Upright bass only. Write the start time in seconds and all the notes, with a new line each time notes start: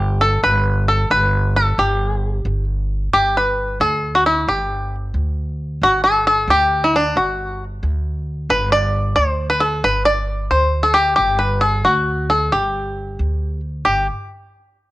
Already playing: G1
0.43 G1
1.10 G1
1.78 G1
2.45 G1
3.14 G1
3.80 D2
4.47 G1
5.14 D2
5.81 G1
6.48 D2
7.16 G1
7.83 D2
8.49 G1
9.17 D2
9.84 G1
10.51 D2
11.18 G1
11.85 D2
12.52 G1
13.19 D2
13.87 G1